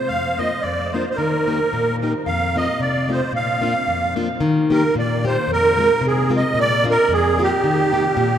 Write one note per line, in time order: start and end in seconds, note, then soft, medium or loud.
0.08 0.51 F2 medium
0.08 0.39 F5 medium
0.38 0.50 A#3 medium
0.38 0.50 D4 medium
0.38 0.50 F4 medium
0.38 0.63 D#5 medium
0.62 1.05 F2 medium
0.62 0.93 D5 medium
0.92 1.04 A#3 medium
0.92 1.05 D4 soft
0.92 1.05 F4 soft
0.92 1.09 C5 medium
1.10 1.17 C5 medium
1.16 1.59 D#3 medium
1.16 1.96 A#4 medium
1.47 1.58 A#3 medium
1.47 1.58 D#4 medium
1.47 1.59 G4 medium
1.73 2.13 A#2 medium
2.02 2.13 A#3 medium
2.02 2.13 D#4 soft
2.02 2.13 G4 medium
2.02 2.13 A#4 medium
2.26 2.67 F2 medium
2.26 2.56 F5 medium
2.56 2.66 A3 medium
2.56 2.66 C4 medium
2.56 2.67 F4 medium
2.56 2.81 D#5 medium
2.80 3.20 C3 medium
2.80 3.10 D5 medium
3.09 3.20 A3 soft
3.09 3.20 C4 soft
3.09 3.20 F4 medium
3.09 3.33 C5 medium
3.32 3.74 A#2 medium
3.32 4.14 F5 medium
3.62 3.73 A#3 medium
3.62 3.74 D4 medium
3.62 3.74 F4 medium
3.88 4.29 F2 medium
4.16 4.28 A#3 medium
4.16 4.28 D4 medium
4.16 4.28 F4 medium
4.40 4.82 D#3 medium
4.70 4.82 A#3 medium
4.70 4.82 D#4 medium
4.70 4.83 G4 medium
4.70 4.95 A#4 medium
4.95 5.36 A#2 medium
4.95 5.25 D5 medium
5.23 5.35 A#3 medium
5.23 5.35 D#4 medium
5.23 5.36 G4 medium
5.23 5.51 C5 medium
5.47 5.89 F2 medium
5.52 6.06 A#4 loud
5.77 5.89 G#3 medium
5.77 5.89 C4 medium
5.77 5.90 F4 medium
6.01 6.43 C3 medium
6.07 6.32 G#4 medium
6.29 6.42 G#3 medium
6.29 6.42 C4 soft
6.29 6.42 F4 medium
6.37 6.59 D#5 medium
6.54 6.96 A#2 medium
6.60 6.86 D5 loud
6.84 6.96 A#3 medium
6.84 6.96 D4 medium
6.84 6.97 F4 medium
6.91 7.13 A#4 loud
7.09 7.51 F2 medium
7.13 7.42 G#4 medium
7.38 7.50 A#3 medium
7.38 7.50 D4 soft
7.38 7.51 F4 medium
7.43 8.38 G4 medium
7.64 8.05 D#3 medium
7.92 8.04 A#3 medium
7.92 8.04 D#4 medium
7.92 8.04 G4 medium
8.17 8.38 A#2 medium